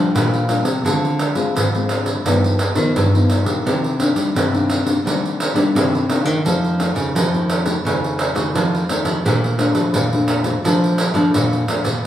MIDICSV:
0, 0, Header, 1, 4, 480
1, 0, Start_track
1, 0, Tempo, 700117
1, 581, Time_signature, 4, 2, 24, 8
1, 8271, End_track
2, 0, Start_track
2, 0, Title_t, "Nylon-string guitar"
2, 0, Program_c, 0, 24
2, 0, Note_on_c, 0, 46, 53
2, 0, Note_on_c, 0, 55, 62
2, 0, Note_on_c, 0, 62, 64
2, 0, Note_on_c, 0, 65, 69
2, 77, Note_off_c, 0, 46, 0
2, 104, Note_on_c, 0, 53, 55
2, 294, Note_off_c, 0, 55, 0
2, 295, Note_off_c, 0, 62, 0
2, 296, Note_off_c, 0, 65, 0
2, 333, Note_on_c, 0, 55, 55
2, 338, Note_on_c, 0, 62, 57
2, 339, Note_on_c, 0, 65, 69
2, 479, Note_off_c, 0, 55, 0
2, 479, Note_off_c, 0, 62, 0
2, 481, Note_off_c, 0, 65, 0
2, 559, Note_off_c, 0, 53, 0
2, 587, Note_on_c, 0, 50, 52
2, 589, Note_on_c, 0, 56, 54
2, 591, Note_on_c, 0, 60, 51
2, 594, Note_on_c, 0, 65, 58
2, 809, Note_off_c, 0, 56, 0
2, 811, Note_off_c, 0, 60, 0
2, 813, Note_off_c, 0, 65, 0
2, 932, Note_on_c, 0, 56, 60
2, 935, Note_on_c, 0, 60, 56
2, 936, Note_on_c, 0, 65, 66
2, 1040, Note_off_c, 0, 50, 0
2, 1064, Note_on_c, 0, 50, 62
2, 1139, Note_off_c, 0, 56, 0
2, 1139, Note_off_c, 0, 60, 0
2, 1140, Note_off_c, 0, 65, 0
2, 1198, Note_on_c, 0, 56, 58
2, 1203, Note_on_c, 0, 60, 57
2, 1208, Note_on_c, 0, 65, 57
2, 1512, Note_off_c, 0, 56, 0
2, 1515, Note_off_c, 0, 60, 0
2, 1516, Note_off_c, 0, 65, 0
2, 1519, Note_off_c, 0, 50, 0
2, 1548, Note_on_c, 0, 43, 55
2, 1550, Note_on_c, 0, 53, 52
2, 1552, Note_on_c, 0, 59, 56
2, 1556, Note_on_c, 0, 63, 60
2, 1770, Note_off_c, 0, 53, 0
2, 1773, Note_off_c, 0, 59, 0
2, 1774, Note_off_c, 0, 63, 0
2, 1885, Note_on_c, 0, 53, 62
2, 1891, Note_on_c, 0, 59, 56
2, 1892, Note_on_c, 0, 63, 65
2, 2002, Note_off_c, 0, 43, 0
2, 2029, Note_on_c, 0, 43, 53
2, 2095, Note_off_c, 0, 53, 0
2, 2098, Note_off_c, 0, 59, 0
2, 2098, Note_off_c, 0, 63, 0
2, 2152, Note_on_c, 0, 53, 62
2, 2157, Note_on_c, 0, 59, 55
2, 2158, Note_on_c, 0, 63, 67
2, 2349, Note_off_c, 0, 53, 0
2, 2351, Note_off_c, 0, 59, 0
2, 2351, Note_off_c, 0, 63, 0
2, 2364, Note_on_c, 0, 51, 62
2, 2367, Note_on_c, 0, 58, 58
2, 2371, Note_on_c, 0, 62, 65
2, 2482, Note_off_c, 0, 43, 0
2, 2507, Note_on_c, 0, 48, 53
2, 2730, Note_off_c, 0, 58, 0
2, 2731, Note_off_c, 0, 51, 0
2, 2732, Note_off_c, 0, 62, 0
2, 2738, Note_on_c, 0, 51, 57
2, 2739, Note_on_c, 0, 58, 52
2, 2741, Note_on_c, 0, 62, 64
2, 2961, Note_off_c, 0, 48, 0
2, 2987, Note_on_c, 0, 43, 59
2, 3062, Note_off_c, 0, 58, 0
2, 3063, Note_off_c, 0, 51, 0
2, 3063, Note_off_c, 0, 62, 0
2, 3105, Note_on_c, 0, 51, 55
2, 3107, Note_on_c, 0, 58, 54
2, 3111, Note_on_c, 0, 62, 63
2, 3306, Note_off_c, 0, 51, 0
2, 3307, Note_off_c, 0, 58, 0
2, 3308, Note_off_c, 0, 62, 0
2, 3322, Note_on_c, 0, 51, 63
2, 3326, Note_on_c, 0, 58, 61
2, 3328, Note_on_c, 0, 62, 62
2, 3414, Note_off_c, 0, 51, 0
2, 3416, Note_off_c, 0, 58, 0
2, 3417, Note_off_c, 0, 62, 0
2, 3441, Note_off_c, 0, 43, 0
2, 3458, Note_on_c, 0, 48, 56
2, 3462, Note_on_c, 0, 51, 54
2, 3464, Note_on_c, 0, 58, 59
2, 3468, Note_on_c, 0, 62, 63
2, 3783, Note_off_c, 0, 51, 0
2, 3785, Note_off_c, 0, 58, 0
2, 3786, Note_off_c, 0, 62, 0
2, 3796, Note_on_c, 0, 51, 67
2, 3800, Note_on_c, 0, 58, 57
2, 3804, Note_on_c, 0, 62, 64
2, 3917, Note_off_c, 0, 48, 0
2, 3947, Note_on_c, 0, 43, 53
2, 4131, Note_off_c, 0, 51, 0
2, 4132, Note_off_c, 0, 58, 0
2, 4135, Note_off_c, 0, 62, 0
2, 4177, Note_on_c, 0, 51, 57
2, 4179, Note_on_c, 0, 58, 58
2, 4183, Note_on_c, 0, 62, 64
2, 4382, Note_off_c, 0, 51, 0
2, 4382, Note_off_c, 0, 58, 0
2, 4383, Note_off_c, 0, 62, 0
2, 4401, Note_off_c, 0, 43, 0
2, 4425, Note_on_c, 0, 41, 52
2, 4425, Note_on_c, 0, 51, 54
2, 4427, Note_on_c, 0, 57, 53
2, 4432, Note_on_c, 0, 61, 62
2, 4625, Note_off_c, 0, 51, 0
2, 4627, Note_off_c, 0, 57, 0
2, 4628, Note_off_c, 0, 61, 0
2, 4655, Note_on_c, 0, 51, 57
2, 4658, Note_on_c, 0, 57, 62
2, 4659, Note_on_c, 0, 61, 65
2, 4880, Note_off_c, 0, 41, 0
2, 4884, Note_off_c, 0, 51, 0
2, 4885, Note_off_c, 0, 57, 0
2, 4885, Note_off_c, 0, 61, 0
2, 4903, Note_on_c, 0, 41, 56
2, 5030, Note_on_c, 0, 51, 58
2, 5031, Note_on_c, 0, 57, 56
2, 5037, Note_on_c, 0, 61, 62
2, 5227, Note_off_c, 0, 51, 0
2, 5228, Note_off_c, 0, 57, 0
2, 5231, Note_off_c, 0, 61, 0
2, 5244, Note_on_c, 0, 51, 65
2, 5247, Note_on_c, 0, 57, 63
2, 5250, Note_on_c, 0, 61, 69
2, 5335, Note_off_c, 0, 51, 0
2, 5336, Note_off_c, 0, 57, 0
2, 5337, Note_off_c, 0, 61, 0
2, 5358, Note_off_c, 0, 41, 0
2, 5383, Note_on_c, 0, 41, 57
2, 5387, Note_on_c, 0, 51, 59
2, 5388, Note_on_c, 0, 61, 60
2, 5390, Note_on_c, 0, 57, 51
2, 5608, Note_off_c, 0, 57, 0
2, 5609, Note_off_c, 0, 51, 0
2, 5610, Note_off_c, 0, 61, 0
2, 5724, Note_on_c, 0, 51, 65
2, 5728, Note_on_c, 0, 57, 59
2, 5728, Note_on_c, 0, 61, 69
2, 5838, Note_off_c, 0, 41, 0
2, 5860, Note_on_c, 0, 41, 57
2, 6054, Note_off_c, 0, 51, 0
2, 6055, Note_off_c, 0, 57, 0
2, 6056, Note_off_c, 0, 61, 0
2, 6097, Note_on_c, 0, 51, 67
2, 6100, Note_on_c, 0, 57, 59
2, 6104, Note_on_c, 0, 61, 62
2, 6300, Note_off_c, 0, 51, 0
2, 6302, Note_off_c, 0, 57, 0
2, 6303, Note_off_c, 0, 61, 0
2, 6316, Note_off_c, 0, 41, 0
2, 6347, Note_on_c, 0, 53, 62
2, 6350, Note_on_c, 0, 46, 53
2, 6353, Note_on_c, 0, 57, 52
2, 6356, Note_on_c, 0, 62, 63
2, 6545, Note_off_c, 0, 53, 0
2, 6548, Note_off_c, 0, 57, 0
2, 6549, Note_off_c, 0, 62, 0
2, 6568, Note_on_c, 0, 53, 58
2, 6572, Note_on_c, 0, 57, 60
2, 6575, Note_on_c, 0, 62, 64
2, 6800, Note_off_c, 0, 46, 0
2, 6895, Note_off_c, 0, 53, 0
2, 6897, Note_off_c, 0, 57, 0
2, 6898, Note_off_c, 0, 62, 0
2, 6947, Note_on_c, 0, 53, 59
2, 6951, Note_on_c, 0, 57, 64
2, 6953, Note_on_c, 0, 62, 61
2, 7145, Note_off_c, 0, 53, 0
2, 7146, Note_off_c, 0, 57, 0
2, 7147, Note_off_c, 0, 62, 0
2, 7165, Note_on_c, 0, 53, 66
2, 7167, Note_on_c, 0, 57, 63
2, 7170, Note_on_c, 0, 62, 68
2, 7254, Note_off_c, 0, 53, 0
2, 7254, Note_off_c, 0, 57, 0
2, 7256, Note_off_c, 0, 62, 0
2, 7304, Note_on_c, 0, 53, 58
2, 7308, Note_on_c, 0, 46, 56
2, 7308, Note_on_c, 0, 57, 58
2, 7311, Note_on_c, 0, 62, 68
2, 7526, Note_off_c, 0, 53, 0
2, 7528, Note_off_c, 0, 57, 0
2, 7530, Note_off_c, 0, 62, 0
2, 7642, Note_on_c, 0, 53, 60
2, 7647, Note_on_c, 0, 57, 65
2, 7650, Note_on_c, 0, 62, 73
2, 7759, Note_off_c, 0, 46, 0
2, 7785, Note_on_c, 0, 41, 59
2, 7972, Note_off_c, 0, 53, 0
2, 7973, Note_off_c, 0, 57, 0
2, 7975, Note_off_c, 0, 62, 0
2, 8014, Note_on_c, 0, 53, 57
2, 8018, Note_on_c, 0, 57, 63
2, 8019, Note_on_c, 0, 62, 67
2, 8157, Note_off_c, 0, 53, 0
2, 8158, Note_off_c, 0, 57, 0
2, 8159, Note_off_c, 0, 62, 0
2, 8237, Note_off_c, 0, 41, 0
2, 8271, End_track
3, 0, Start_track
3, 0, Title_t, "Nylon-string guitar"
3, 0, Program_c, 1, 24
3, 0, Note_on_c, 1, 53, 91
3, 72, Note_off_c, 1, 53, 0
3, 102, Note_on_c, 1, 46, 86
3, 446, Note_off_c, 1, 46, 0
3, 446, Note_on_c, 1, 48, 84
3, 554, Note_off_c, 1, 48, 0
3, 580, Note_on_c, 1, 50, 85
3, 887, Note_off_c, 1, 50, 0
3, 927, Note_on_c, 1, 56, 75
3, 1036, Note_off_c, 1, 56, 0
3, 1067, Note_on_c, 1, 44, 78
3, 1473, Note_off_c, 1, 44, 0
3, 1546, Note_on_c, 1, 43, 78
3, 1850, Note_off_c, 1, 43, 0
3, 1889, Note_on_c, 1, 51, 94
3, 1997, Note_off_c, 1, 51, 0
3, 2028, Note_on_c, 1, 43, 75
3, 2369, Note_off_c, 1, 43, 0
3, 2369, Note_on_c, 1, 46, 79
3, 2477, Note_off_c, 1, 46, 0
3, 2510, Note_on_c, 1, 48, 84
3, 2813, Note_off_c, 1, 48, 0
3, 2850, Note_on_c, 1, 55, 75
3, 2957, Note_off_c, 1, 55, 0
3, 2987, Note_on_c, 1, 48, 72
3, 3393, Note_off_c, 1, 48, 0
3, 3468, Note_on_c, 1, 55, 77
3, 3772, Note_off_c, 1, 55, 0
3, 3808, Note_on_c, 1, 55, 91
3, 3916, Note_off_c, 1, 55, 0
3, 3944, Note_on_c, 1, 48, 81
3, 4288, Note_off_c, 1, 48, 0
3, 4288, Note_on_c, 1, 51, 82
3, 4396, Note_off_c, 1, 51, 0
3, 4422, Note_on_c, 1, 53, 85
3, 4728, Note_off_c, 1, 53, 0
3, 4767, Note_on_c, 1, 49, 81
3, 4875, Note_off_c, 1, 49, 0
3, 4904, Note_on_c, 1, 53, 80
3, 5311, Note_off_c, 1, 53, 0
3, 5382, Note_on_c, 1, 49, 84
3, 5688, Note_off_c, 1, 49, 0
3, 5725, Note_on_c, 1, 49, 94
3, 5834, Note_off_c, 1, 49, 0
3, 5862, Note_on_c, 1, 53, 87
3, 6065, Note_off_c, 1, 53, 0
3, 6201, Note_on_c, 1, 53, 83
3, 6311, Note_off_c, 1, 53, 0
3, 6344, Note_on_c, 1, 46, 94
3, 6648, Note_off_c, 1, 46, 0
3, 6683, Note_on_c, 1, 53, 77
3, 6792, Note_off_c, 1, 53, 0
3, 6820, Note_on_c, 1, 46, 82
3, 7227, Note_off_c, 1, 46, 0
3, 7298, Note_on_c, 1, 53, 88
3, 7604, Note_off_c, 1, 53, 0
3, 7637, Note_on_c, 1, 53, 100
3, 7748, Note_off_c, 1, 53, 0
3, 7779, Note_on_c, 1, 46, 87
3, 7982, Note_off_c, 1, 46, 0
3, 8120, Note_on_c, 1, 46, 82
3, 8229, Note_off_c, 1, 46, 0
3, 8271, End_track
4, 0, Start_track
4, 0, Title_t, "Pandeiro"
4, 107, Note_on_c, 9, 54, 78
4, 175, Note_off_c, 9, 54, 0
4, 231, Note_on_c, 9, 54, 31
4, 299, Note_off_c, 9, 54, 0
4, 335, Note_on_c, 9, 54, 60
4, 403, Note_off_c, 9, 54, 0
4, 446, Note_on_c, 9, 54, 61
4, 515, Note_off_c, 9, 54, 0
4, 588, Note_on_c, 9, 54, 70
4, 656, Note_off_c, 9, 54, 0
4, 719, Note_on_c, 9, 54, 31
4, 787, Note_off_c, 9, 54, 0
4, 818, Note_on_c, 9, 54, 69
4, 887, Note_off_c, 9, 54, 0
4, 928, Note_on_c, 9, 54, 49
4, 997, Note_off_c, 9, 54, 0
4, 1073, Note_on_c, 9, 54, 79
4, 1142, Note_off_c, 9, 54, 0
4, 1197, Note_on_c, 9, 54, 31
4, 1266, Note_off_c, 9, 54, 0
4, 1297, Note_on_c, 9, 54, 61
4, 1365, Note_off_c, 9, 54, 0
4, 1412, Note_on_c, 9, 54, 57
4, 1480, Note_off_c, 9, 54, 0
4, 1548, Note_on_c, 9, 54, 80
4, 1617, Note_off_c, 9, 54, 0
4, 1675, Note_on_c, 9, 54, 36
4, 1743, Note_off_c, 9, 54, 0
4, 1777, Note_on_c, 9, 54, 69
4, 1845, Note_off_c, 9, 54, 0
4, 1888, Note_on_c, 9, 54, 56
4, 1957, Note_off_c, 9, 54, 0
4, 2030, Note_on_c, 9, 54, 76
4, 2099, Note_off_c, 9, 54, 0
4, 2159, Note_on_c, 9, 54, 33
4, 2228, Note_off_c, 9, 54, 0
4, 2259, Note_on_c, 9, 54, 62
4, 2328, Note_off_c, 9, 54, 0
4, 2374, Note_on_c, 9, 54, 60
4, 2443, Note_off_c, 9, 54, 0
4, 2514, Note_on_c, 9, 54, 73
4, 2582, Note_off_c, 9, 54, 0
4, 2635, Note_on_c, 9, 54, 30
4, 2703, Note_off_c, 9, 54, 0
4, 2740, Note_on_c, 9, 54, 65
4, 2809, Note_off_c, 9, 54, 0
4, 2853, Note_on_c, 9, 54, 54
4, 2922, Note_off_c, 9, 54, 0
4, 2991, Note_on_c, 9, 54, 75
4, 3060, Note_off_c, 9, 54, 0
4, 3116, Note_on_c, 9, 54, 32
4, 3184, Note_off_c, 9, 54, 0
4, 3220, Note_on_c, 9, 54, 63
4, 3288, Note_off_c, 9, 54, 0
4, 3336, Note_on_c, 9, 54, 54
4, 3405, Note_off_c, 9, 54, 0
4, 3476, Note_on_c, 9, 54, 74
4, 3545, Note_off_c, 9, 54, 0
4, 3603, Note_on_c, 9, 54, 36
4, 3672, Note_off_c, 9, 54, 0
4, 3704, Note_on_c, 9, 54, 73
4, 3772, Note_off_c, 9, 54, 0
4, 3811, Note_on_c, 9, 54, 59
4, 3879, Note_off_c, 9, 54, 0
4, 3951, Note_on_c, 9, 54, 85
4, 4019, Note_off_c, 9, 54, 0
4, 4079, Note_on_c, 9, 54, 30
4, 4148, Note_off_c, 9, 54, 0
4, 4179, Note_on_c, 9, 54, 65
4, 4248, Note_off_c, 9, 54, 0
4, 4288, Note_on_c, 9, 54, 62
4, 4356, Note_off_c, 9, 54, 0
4, 4427, Note_on_c, 9, 54, 73
4, 4496, Note_off_c, 9, 54, 0
4, 4555, Note_on_c, 9, 54, 29
4, 4624, Note_off_c, 9, 54, 0
4, 4661, Note_on_c, 9, 54, 63
4, 4729, Note_off_c, 9, 54, 0
4, 4771, Note_on_c, 9, 54, 51
4, 4840, Note_off_c, 9, 54, 0
4, 4909, Note_on_c, 9, 54, 80
4, 4978, Note_off_c, 9, 54, 0
4, 5036, Note_on_c, 9, 54, 31
4, 5104, Note_off_c, 9, 54, 0
4, 5139, Note_on_c, 9, 54, 70
4, 5208, Note_off_c, 9, 54, 0
4, 5249, Note_on_c, 9, 54, 57
4, 5318, Note_off_c, 9, 54, 0
4, 5392, Note_on_c, 9, 54, 73
4, 5461, Note_off_c, 9, 54, 0
4, 5514, Note_on_c, 9, 54, 35
4, 5583, Note_off_c, 9, 54, 0
4, 5615, Note_on_c, 9, 54, 72
4, 5683, Note_off_c, 9, 54, 0
4, 5731, Note_on_c, 9, 54, 57
4, 5800, Note_off_c, 9, 54, 0
4, 5865, Note_on_c, 9, 54, 82
4, 5934, Note_off_c, 9, 54, 0
4, 5996, Note_on_c, 9, 54, 31
4, 6065, Note_off_c, 9, 54, 0
4, 6097, Note_on_c, 9, 54, 69
4, 6166, Note_off_c, 9, 54, 0
4, 6206, Note_on_c, 9, 54, 61
4, 6274, Note_off_c, 9, 54, 0
4, 6348, Note_on_c, 9, 54, 80
4, 6416, Note_off_c, 9, 54, 0
4, 6473, Note_on_c, 9, 54, 33
4, 6541, Note_off_c, 9, 54, 0
4, 6574, Note_on_c, 9, 54, 70
4, 6643, Note_off_c, 9, 54, 0
4, 6683, Note_on_c, 9, 54, 55
4, 6751, Note_off_c, 9, 54, 0
4, 6814, Note_on_c, 9, 54, 76
4, 6882, Note_off_c, 9, 54, 0
4, 6943, Note_on_c, 9, 54, 34
4, 7012, Note_off_c, 9, 54, 0
4, 7047, Note_on_c, 9, 54, 70
4, 7115, Note_off_c, 9, 54, 0
4, 7159, Note_on_c, 9, 54, 59
4, 7228, Note_off_c, 9, 54, 0
4, 7302, Note_on_c, 9, 54, 74
4, 7370, Note_off_c, 9, 54, 0
4, 7431, Note_on_c, 9, 54, 35
4, 7500, Note_off_c, 9, 54, 0
4, 7529, Note_on_c, 9, 54, 73
4, 7598, Note_off_c, 9, 54, 0
4, 7643, Note_on_c, 9, 54, 60
4, 7712, Note_off_c, 9, 54, 0
4, 7776, Note_on_c, 9, 54, 78
4, 7845, Note_off_c, 9, 54, 0
4, 7904, Note_on_c, 9, 54, 33
4, 7973, Note_off_c, 9, 54, 0
4, 8010, Note_on_c, 9, 54, 68
4, 8079, Note_off_c, 9, 54, 0
4, 8122, Note_on_c, 9, 54, 60
4, 8191, Note_off_c, 9, 54, 0
4, 8271, End_track
0, 0, End_of_file